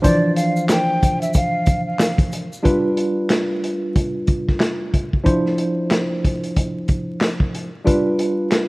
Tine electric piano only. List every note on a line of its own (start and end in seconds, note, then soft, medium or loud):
0.02 2.46 E3 medium
0.02 2.46 F3 loud
0.02 2.46 D4 medium
0.02 2.47 C5 loud
2.63 5.06 G3 medium
2.63 5.07 D4 medium
2.63 5.07 F4 medium
2.63 5.07 B4 loud
5.24 7.67 F3 medium
5.24 7.68 D4 medium
5.24 7.68 E4 medium
5.24 7.68 C5 loud
7.85 8.68 G3 medium
7.85 8.68 D4 medium
7.85 8.68 F4 medium
7.85 8.68 B4 loud